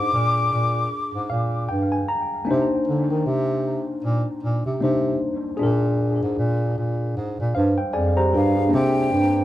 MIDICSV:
0, 0, Header, 1, 4, 480
1, 0, Start_track
1, 0, Tempo, 782269
1, 1513, Time_signature, 4, 2, 24, 8
1, 5795, End_track
2, 0, Start_track
2, 0, Title_t, "Flute"
2, 0, Program_c, 0, 73
2, 0, Note_on_c, 0, 86, 99
2, 1043, Note_off_c, 0, 86, 0
2, 5126, Note_on_c, 0, 77, 80
2, 5342, Note_off_c, 0, 77, 0
2, 5366, Note_on_c, 0, 79, 104
2, 5795, Note_off_c, 0, 79, 0
2, 5795, End_track
3, 0, Start_track
3, 0, Title_t, "Tine electric piano"
3, 0, Program_c, 1, 4
3, 0, Control_c, 1, 64, 127
3, 0, Note_on_c, 1, 62, 59
3, 0, Note_on_c, 1, 65, 58
3, 0, Note_on_c, 1, 68, 58
3, 0, Note_on_c, 1, 70, 72
3, 796, Note_on_c, 1, 77, 66
3, 1017, Note_off_c, 1, 77, 0
3, 1035, Note_on_c, 1, 79, 70
3, 1165, Note_off_c, 1, 79, 0
3, 1177, Note_on_c, 1, 80, 66
3, 1267, Note_off_c, 1, 80, 0
3, 1279, Note_on_c, 1, 82, 66
3, 1480, Note_off_c, 1, 68, 0
3, 1492, Note_off_c, 1, 65, 0
3, 1498, Note_off_c, 1, 70, 0
3, 1499, Note_off_c, 1, 82, 0
3, 1502, Note_on_c, 1, 58, 77
3, 1506, Note_off_c, 1, 62, 0
3, 1515, Note_on_c, 1, 62, 68
3, 1522, Control_c, 1, 64, 0
3, 1526, Note_on_c, 1, 63, 67
3, 1538, Note_on_c, 1, 72, 85
3, 1622, Control_c, 1, 64, 127
3, 2922, Note_off_c, 1, 58, 0
3, 2929, Note_off_c, 1, 62, 0
3, 2934, Note_off_c, 1, 63, 0
3, 2940, Note_off_c, 1, 72, 0
3, 2948, Note_on_c, 1, 58, 57
3, 2952, Note_on_c, 1, 62, 54
3, 2958, Note_on_c, 1, 63, 53
3, 2966, Note_on_c, 1, 72, 61
3, 3418, Note_on_c, 1, 68, 75
3, 3423, Note_off_c, 1, 62, 0
3, 3430, Note_off_c, 1, 58, 0
3, 3430, Note_on_c, 1, 62, 68
3, 3435, Note_off_c, 1, 63, 0
3, 3439, Note_off_c, 1, 72, 0
3, 3441, Control_c, 1, 64, 0
3, 3443, Note_on_c, 1, 65, 68
3, 3455, Note_on_c, 1, 70, 85
3, 3535, Control_c, 1, 64, 127
3, 4606, Note_off_c, 1, 62, 0
3, 4613, Note_off_c, 1, 65, 0
3, 4619, Note_off_c, 1, 70, 0
3, 4631, Note_on_c, 1, 77, 64
3, 4636, Note_on_c, 1, 72, 47
3, 4763, Note_off_c, 1, 77, 0
3, 4772, Note_on_c, 1, 79, 68
3, 4861, Note_off_c, 1, 72, 0
3, 4863, Note_off_c, 1, 68, 0
3, 4864, Note_off_c, 1, 79, 0
3, 4868, Note_on_c, 1, 80, 63
3, 4869, Note_on_c, 1, 74, 66
3, 4871, Note_on_c, 1, 68, 51
3, 5001, Note_off_c, 1, 80, 0
3, 5004, Note_off_c, 1, 74, 0
3, 5005, Note_off_c, 1, 68, 0
3, 5012, Note_on_c, 1, 72, 69
3, 5013, Note_on_c, 1, 82, 67
3, 5017, Note_on_c, 1, 67, 57
3, 5106, Note_off_c, 1, 72, 0
3, 5108, Note_off_c, 1, 67, 0
3, 5112, Note_on_c, 1, 70, 59
3, 5115, Note_on_c, 1, 65, 50
3, 5246, Note_off_c, 1, 70, 0
3, 5247, Note_off_c, 1, 65, 0
3, 5252, Note_on_c, 1, 68, 55
3, 5256, Note_on_c, 1, 62, 49
3, 5327, Note_off_c, 1, 82, 0
3, 5333, Note_on_c, 1, 58, 64
3, 5339, Note_off_c, 1, 62, 0
3, 5347, Note_on_c, 1, 62, 56
3, 5357, Note_on_c, 1, 60, 61
3, 5358, Control_c, 1, 64, 0
3, 5370, Note_on_c, 1, 72, 70
3, 5480, Note_off_c, 1, 68, 0
3, 5482, Control_c, 1, 64, 127
3, 5795, Note_off_c, 1, 58, 0
3, 5795, Note_off_c, 1, 60, 0
3, 5795, Note_off_c, 1, 62, 0
3, 5795, Note_off_c, 1, 72, 0
3, 5795, End_track
4, 0, Start_track
4, 0, Title_t, "Bass clarinet"
4, 0, Program_c, 2, 71
4, 0, Note_on_c, 2, 44, 84
4, 71, Note_off_c, 2, 44, 0
4, 83, Note_on_c, 2, 46, 91
4, 301, Note_off_c, 2, 46, 0
4, 323, Note_on_c, 2, 46, 84
4, 541, Note_off_c, 2, 46, 0
4, 703, Note_on_c, 2, 44, 89
4, 790, Note_off_c, 2, 44, 0
4, 805, Note_on_c, 2, 46, 85
4, 1022, Note_off_c, 2, 46, 0
4, 1046, Note_on_c, 2, 43, 79
4, 1263, Note_off_c, 2, 43, 0
4, 1525, Note_on_c, 2, 48, 97
4, 1650, Note_off_c, 2, 48, 0
4, 1766, Note_on_c, 2, 50, 81
4, 1891, Note_off_c, 2, 50, 0
4, 1905, Note_on_c, 2, 51, 78
4, 1991, Note_off_c, 2, 51, 0
4, 2003, Note_on_c, 2, 48, 95
4, 2355, Note_off_c, 2, 48, 0
4, 2481, Note_on_c, 2, 46, 93
4, 2608, Note_off_c, 2, 46, 0
4, 2720, Note_on_c, 2, 46, 89
4, 2847, Note_off_c, 2, 46, 0
4, 2860, Note_on_c, 2, 48, 77
4, 2948, Note_off_c, 2, 48, 0
4, 2961, Note_on_c, 2, 48, 94
4, 3179, Note_off_c, 2, 48, 0
4, 3440, Note_on_c, 2, 46, 96
4, 3792, Note_off_c, 2, 46, 0
4, 3822, Note_on_c, 2, 44, 80
4, 3909, Note_off_c, 2, 44, 0
4, 3917, Note_on_c, 2, 46, 92
4, 4137, Note_off_c, 2, 46, 0
4, 4160, Note_on_c, 2, 46, 72
4, 4379, Note_off_c, 2, 46, 0
4, 4398, Note_on_c, 2, 44, 81
4, 4526, Note_off_c, 2, 44, 0
4, 4541, Note_on_c, 2, 46, 82
4, 4629, Note_off_c, 2, 46, 0
4, 4640, Note_on_c, 2, 43, 93
4, 4767, Note_off_c, 2, 43, 0
4, 4879, Note_on_c, 2, 41, 79
4, 5098, Note_off_c, 2, 41, 0
4, 5120, Note_on_c, 2, 43, 94
4, 5338, Note_off_c, 2, 43, 0
4, 5358, Note_on_c, 2, 48, 105
4, 5577, Note_off_c, 2, 48, 0
4, 5597, Note_on_c, 2, 43, 88
4, 5795, Note_off_c, 2, 43, 0
4, 5795, End_track
0, 0, End_of_file